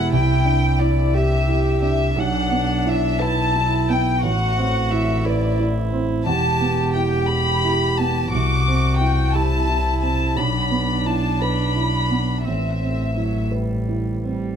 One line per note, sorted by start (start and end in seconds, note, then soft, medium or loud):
0.00 0.13 E1 medium
0.00 0.14 E2 medium
0.00 0.15 B3 soft
0.00 0.14 E4 soft
0.00 1.15 E4 medium
0.00 0.14 G4 soft
0.00 0.13 F#5 medium
0.12 2.18 C2 medium
0.12 2.12 C2 medium
0.12 0.79 G5 medium
0.45 1.00 D4 soft
0.79 1.35 E4 soft
0.79 1.14 D5 medium
1.14 2.16 G4 medium
1.14 1.68 G4 soft
1.14 1.81 E5 medium
1.48 2.02 E4 soft
1.82 2.16 D4 soft
1.82 2.15 E5 medium
2.16 4.25 B1 medium
2.16 4.19 B1 medium
2.16 3.22 D4 medium
2.16 2.86 F#5 medium
2.51 3.07 B3 soft
2.86 3.41 E4 soft
2.86 3.21 E5 medium
3.20 4.22 E4 medium
3.20 3.75 B4 soft
3.20 3.89 A5 medium
3.55 4.10 E4 soft
3.89 4.23 B3 soft
3.89 4.23 G5 medium
4.23 6.21 A1 medium
4.23 6.27 A1 medium
4.23 5.26 F#4 medium
4.23 4.90 F#5 medium
4.58 5.12 C4 soft
4.92 5.45 E4 soft
4.92 5.25 E5 medium
5.25 6.28 E4 medium
5.25 5.79 B4 soft
5.25 5.59 D5 medium
5.59 6.13 E4 soft
5.93 6.26 C4 soft
6.26 8.34 E1 medium
6.26 8.28 E2 medium
6.26 8.32 G4 medium
6.26 6.90 A5 medium
6.61 7.15 B3 soft
6.95 7.49 E4 soft
6.95 7.28 G5 medium
7.28 7.84 G4 soft
7.28 7.98 B5 medium
7.65 8.19 E4 soft
7.98 8.33 B3 soft
7.98 8.32 A5 medium
8.32 10.39 C2 medium
8.32 10.34 C2 soft
8.32 9.37 F#4 medium
8.32 8.99 D6 medium
8.68 9.21 C4 soft
9.00 9.55 E4 soft
9.00 9.33 G5 medium
9.34 10.40 E4 medium
9.34 9.89 G4 soft
9.34 10.01 A5 medium
9.69 10.23 E4 soft
10.02 10.37 C4 soft
10.02 10.36 A5 medium
10.36 12.42 B1 soft
10.36 12.48 B1 soft
10.36 12.47 D4 medium
10.36 11.06 B5 medium
10.71 11.27 B3 soft
11.06 11.62 E4 soft
11.06 11.41 A5 medium
11.41 11.98 B4 soft
11.41 12.47 B5 medium
11.76 12.33 E4 soft
12.11 12.46 B3 soft
12.46 14.56 A1 soft
12.46 13.16 C4 soft
12.46 13.50 E5 soft
12.81 13.38 C4 soft
13.16 13.54 F#3 soft
13.16 13.74 E4 soft
13.51 14.23 G3 soft
13.51 14.10 B4 soft
13.88 14.46 E4 soft
14.24 14.56 G3 soft
14.24 14.56 C4 soft